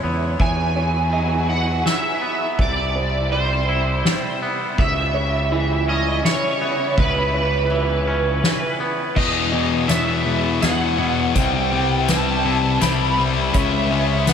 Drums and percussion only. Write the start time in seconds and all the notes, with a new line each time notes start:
0.40 kick, ride
1.13 ride
1.86 snare, ride
2.59 kick, ride
3.32 ride
4.05 snare, ride
4.78 kick, ride
5.51 ride
6.25 snare, ride
6.98 kick, ride
7.71 ride
8.43 snare, ride
9.16 kick, crash
9.89 snare, closed hi-hat
10.62 snare, closed hi-hat
11.35 kick, closed hi-hat
12.08 snare, closed hi-hat
12.81 snare, closed hi-hat
13.54 kick, closed hi-hat
14.27 snare, closed hi-hat